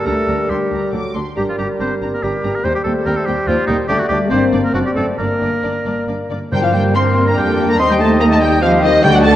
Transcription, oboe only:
0, 0, Header, 1, 2, 480
1, 0, Start_track
1, 0, Key_signature, -2, "minor"
1, 0, Tempo, 432900
1, 65, Time_signature, 3, 2, 24, 8
1, 2465, Tempo, 419287
1, 5345, Tempo, 442478
1, 7745, Tempo, 417827
1, 10509, End_track
2, 0, Start_track
2, 0, Title_t, "Oboe"
2, 0, Program_c, 0, 68
2, 76, Note_on_c, 0, 69, 80
2, 556, Note_on_c, 0, 67, 58
2, 573, Note_off_c, 0, 69, 0
2, 1031, Note_off_c, 0, 67, 0
2, 1523, Note_on_c, 0, 67, 62
2, 1575, Note_off_c, 0, 67, 0
2, 1655, Note_on_c, 0, 65, 51
2, 1704, Note_off_c, 0, 65, 0
2, 1759, Note_on_c, 0, 67, 59
2, 1866, Note_off_c, 0, 67, 0
2, 2001, Note_on_c, 0, 72, 64
2, 2159, Note_off_c, 0, 72, 0
2, 2370, Note_on_c, 0, 70, 56
2, 2468, Note_on_c, 0, 67, 59
2, 2485, Note_off_c, 0, 70, 0
2, 2844, Note_on_c, 0, 70, 63
2, 2861, Note_off_c, 0, 67, 0
2, 2946, Note_on_c, 0, 72, 85
2, 2963, Note_off_c, 0, 70, 0
2, 3062, Note_off_c, 0, 72, 0
2, 3072, Note_on_c, 0, 67, 72
2, 3123, Note_off_c, 0, 67, 0
2, 3172, Note_on_c, 0, 69, 75
2, 3281, Note_off_c, 0, 69, 0
2, 3421, Note_on_c, 0, 70, 78
2, 3540, Note_on_c, 0, 69, 61
2, 3557, Note_off_c, 0, 70, 0
2, 3655, Note_on_c, 0, 67, 80
2, 3672, Note_off_c, 0, 69, 0
2, 3895, Note_on_c, 0, 65, 83
2, 3912, Note_off_c, 0, 67, 0
2, 4116, Note_off_c, 0, 65, 0
2, 4123, Note_on_c, 0, 63, 75
2, 4232, Note_off_c, 0, 63, 0
2, 4364, Note_on_c, 0, 67, 106
2, 4487, Note_on_c, 0, 66, 66
2, 4504, Note_off_c, 0, 67, 0
2, 4592, Note_off_c, 0, 66, 0
2, 4599, Note_on_c, 0, 67, 83
2, 4711, Note_off_c, 0, 67, 0
2, 4849, Note_on_c, 0, 72, 83
2, 5016, Note_off_c, 0, 72, 0
2, 5241, Note_on_c, 0, 70, 72
2, 5353, Note_off_c, 0, 70, 0
2, 5357, Note_on_c, 0, 66, 70
2, 5408, Note_off_c, 0, 66, 0
2, 5480, Note_on_c, 0, 67, 70
2, 5530, Note_off_c, 0, 67, 0
2, 5586, Note_on_c, 0, 69, 64
2, 5695, Note_off_c, 0, 69, 0
2, 5822, Note_on_c, 0, 70, 73
2, 6777, Note_off_c, 0, 70, 0
2, 7282, Note_on_c, 0, 79, 81
2, 7334, Note_off_c, 0, 79, 0
2, 7407, Note_on_c, 0, 77, 60
2, 7457, Note_off_c, 0, 77, 0
2, 7511, Note_on_c, 0, 79, 66
2, 7616, Note_off_c, 0, 79, 0
2, 7748, Note_on_c, 0, 84, 80
2, 8104, Note_off_c, 0, 84, 0
2, 8116, Note_on_c, 0, 82, 65
2, 8169, Note_off_c, 0, 82, 0
2, 8237, Note_on_c, 0, 79, 82
2, 8398, Note_off_c, 0, 79, 0
2, 8597, Note_on_c, 0, 82, 80
2, 8718, Note_on_c, 0, 84, 97
2, 8735, Note_off_c, 0, 82, 0
2, 8827, Note_off_c, 0, 84, 0
2, 8834, Note_on_c, 0, 79, 75
2, 8887, Note_off_c, 0, 79, 0
2, 8956, Note_on_c, 0, 81, 74
2, 9179, Note_off_c, 0, 81, 0
2, 9186, Note_on_c, 0, 82, 87
2, 9240, Note_off_c, 0, 82, 0
2, 9307, Note_on_c, 0, 81, 76
2, 9439, Note_on_c, 0, 79, 84
2, 9456, Note_off_c, 0, 81, 0
2, 9668, Note_on_c, 0, 77, 86
2, 9686, Note_off_c, 0, 79, 0
2, 9907, Note_off_c, 0, 77, 0
2, 9921, Note_on_c, 0, 75, 81
2, 10026, Note_off_c, 0, 75, 0
2, 10148, Note_on_c, 0, 79, 116
2, 10201, Note_off_c, 0, 79, 0
2, 10279, Note_on_c, 0, 78, 86
2, 10330, Note_off_c, 0, 78, 0
2, 10399, Note_on_c, 0, 81, 99
2, 10509, Note_off_c, 0, 81, 0
2, 10509, End_track
0, 0, End_of_file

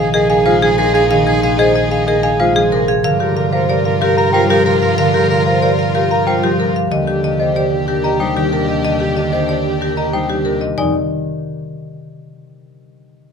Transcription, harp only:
0, 0, Header, 1, 2, 480
1, 0, Start_track
1, 0, Tempo, 322581
1, 1640, Time_signature, 6, 2, 24, 8
1, 19828, End_track
2, 0, Start_track
2, 0, Title_t, "Harp"
2, 0, Program_c, 0, 46
2, 0, Note_on_c, 0, 48, 57
2, 0, Note_on_c, 0, 51, 84
2, 0, Note_on_c, 0, 53, 72
2, 687, Note_on_c, 0, 56, 64
2, 909, Note_off_c, 0, 53, 0
2, 927, Note_on_c, 0, 53, 77
2, 1145, Note_off_c, 0, 48, 0
2, 1163, Note_on_c, 0, 48, 70
2, 1625, Note_off_c, 0, 51, 0
2, 1643, Note_on_c, 0, 51, 79
2, 1876, Note_off_c, 0, 53, 0
2, 1894, Note_on_c, 0, 53, 67
2, 2114, Note_off_c, 0, 48, 0
2, 2132, Note_on_c, 0, 48, 56
2, 3556, Note_off_c, 0, 56, 0
2, 3574, Note_on_c, 0, 56, 66
2, 3784, Note_off_c, 0, 53, 0
2, 3801, Note_on_c, 0, 53, 80
2, 4020, Note_off_c, 0, 48, 0
2, 4037, Note_on_c, 0, 48, 69
2, 4521, Note_on_c, 0, 50, 80
2, 4538, Note_off_c, 0, 48, 0
2, 4541, Note_off_c, 0, 51, 0
2, 4547, Note_off_c, 0, 56, 0
2, 5009, Note_on_c, 0, 48, 56
2, 6452, Note_on_c, 0, 55, 65
2, 6674, Note_off_c, 0, 53, 0
2, 6692, Note_on_c, 0, 53, 77
2, 6908, Note_off_c, 0, 48, 0
2, 6926, Note_on_c, 0, 48, 60
2, 7393, Note_off_c, 0, 50, 0
2, 7411, Note_on_c, 0, 50, 80
2, 7873, Note_off_c, 0, 48, 0
2, 7891, Note_on_c, 0, 48, 55
2, 9312, Note_off_c, 0, 55, 0
2, 9330, Note_on_c, 0, 55, 61
2, 9558, Note_off_c, 0, 53, 0
2, 9576, Note_on_c, 0, 53, 69
2, 9791, Note_off_c, 0, 48, 0
2, 9808, Note_on_c, 0, 48, 55
2, 10262, Note_off_c, 0, 50, 0
2, 10280, Note_on_c, 0, 50, 72
2, 10304, Note_off_c, 0, 48, 0
2, 10307, Note_off_c, 0, 53, 0
2, 10772, Note_on_c, 0, 48, 48
2, 12183, Note_off_c, 0, 55, 0
2, 12201, Note_on_c, 0, 55, 54
2, 12440, Note_on_c, 0, 51, 63
2, 12655, Note_off_c, 0, 48, 0
2, 12673, Note_on_c, 0, 48, 57
2, 13138, Note_off_c, 0, 50, 0
2, 13155, Note_on_c, 0, 50, 62
2, 13613, Note_off_c, 0, 48, 0
2, 13631, Note_on_c, 0, 48, 48
2, 15063, Note_off_c, 0, 55, 0
2, 15081, Note_on_c, 0, 55, 53
2, 15301, Note_off_c, 0, 51, 0
2, 15319, Note_on_c, 0, 51, 58
2, 15548, Note_off_c, 0, 48, 0
2, 15566, Note_on_c, 0, 48, 51
2, 16024, Note_off_c, 0, 51, 0
2, 16042, Note_on_c, 0, 51, 69
2, 16057, Note_off_c, 0, 50, 0
2, 16060, Note_off_c, 0, 55, 0
2, 16062, Note_off_c, 0, 48, 0
2, 16264, Note_off_c, 0, 51, 0
2, 19828, End_track
0, 0, End_of_file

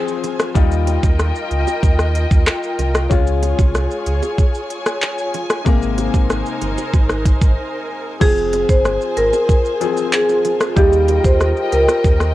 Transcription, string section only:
0, 0, Header, 1, 2, 480
1, 0, Start_track
1, 0, Tempo, 638298
1, 417, Time_signature, 4, 2, 24, 8
1, 9282, End_track
2, 0, Start_track
2, 0, Title_t, "String section"
2, 0, Program_c, 0, 48
2, 0, Note_on_c, 0, 65, 79
2, 0, Note_on_c, 0, 68, 72
2, 0, Note_on_c, 0, 72, 72
2, 0, Note_on_c, 0, 80, 86
2, 398, Note_off_c, 0, 68, 0
2, 398, Note_off_c, 0, 72, 0
2, 398, Note_off_c, 0, 80, 0
2, 415, Note_on_c, 0, 75, 73
2, 415, Note_on_c, 0, 79, 88
2, 416, Note_on_c, 0, 70, 70
2, 2317, Note_off_c, 0, 70, 0
2, 2317, Note_off_c, 0, 75, 0
2, 2317, Note_off_c, 0, 79, 0
2, 2337, Note_on_c, 0, 68, 76
2, 2338, Note_on_c, 0, 73, 74
2, 2338, Note_on_c, 0, 80, 90
2, 4228, Note_off_c, 0, 65, 0
2, 4238, Note_off_c, 0, 68, 0
2, 4238, Note_off_c, 0, 73, 0
2, 4256, Note_on_c, 0, 63, 79
2, 4256, Note_on_c, 0, 70, 74
2, 4257, Note_on_c, 0, 72, 74
2, 6147, Note_off_c, 0, 80, 0
2, 6157, Note_off_c, 0, 63, 0
2, 6157, Note_off_c, 0, 70, 0
2, 6158, Note_off_c, 0, 72, 0
2, 6176, Note_on_c, 0, 65, 81
2, 6177, Note_on_c, 0, 68, 73
2, 6177, Note_on_c, 0, 72, 73
2, 6177, Note_on_c, 0, 80, 89
2, 8077, Note_off_c, 0, 68, 0
2, 8078, Note_off_c, 0, 72, 0
2, 8078, Note_off_c, 0, 80, 0
2, 8097, Note_on_c, 0, 70, 74
2, 8097, Note_on_c, 0, 79, 85
2, 8098, Note_on_c, 0, 75, 72
2, 9282, Note_off_c, 0, 65, 0
2, 9282, Note_off_c, 0, 70, 0
2, 9282, Note_off_c, 0, 75, 0
2, 9282, Note_off_c, 0, 79, 0
2, 9282, End_track
0, 0, End_of_file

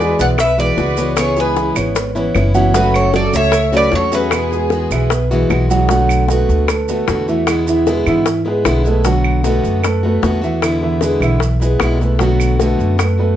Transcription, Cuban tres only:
0, 0, Header, 1, 2, 480
1, 0, Start_track
1, 0, Tempo, 393701
1, 1433, Time_signature, 4, 2, 24, 8
1, 16292, End_track
2, 0, Start_track
2, 0, Title_t, "Cuban tres"
2, 0, Program_c, 0, 25
2, 0, Note_on_c, 0, 74, 91
2, 249, Note_off_c, 0, 74, 0
2, 254, Note_on_c, 0, 78, 101
2, 316, Note_off_c, 0, 78, 0
2, 490, Note_on_c, 0, 76, 101
2, 722, Note_off_c, 0, 76, 0
2, 727, Note_on_c, 0, 74, 93
2, 1447, Note_off_c, 0, 74, 0
2, 1452, Note_on_c, 0, 73, 78
2, 1688, Note_off_c, 0, 73, 0
2, 1706, Note_on_c, 0, 71, 75
2, 2136, Note_off_c, 0, 71, 0
2, 3359, Note_on_c, 0, 71, 86
2, 3578, Note_off_c, 0, 71, 0
2, 3603, Note_on_c, 0, 73, 85
2, 3820, Note_off_c, 0, 73, 0
2, 3849, Note_on_c, 0, 74, 102
2, 4086, Note_off_c, 0, 74, 0
2, 4091, Note_on_c, 0, 76, 113
2, 4574, Note_off_c, 0, 76, 0
2, 4592, Note_on_c, 0, 74, 100
2, 4795, Note_off_c, 0, 74, 0
2, 4820, Note_on_c, 0, 73, 94
2, 5052, Note_off_c, 0, 73, 0
2, 5053, Note_on_c, 0, 71, 83
2, 6915, Note_off_c, 0, 71, 0
2, 16292, End_track
0, 0, End_of_file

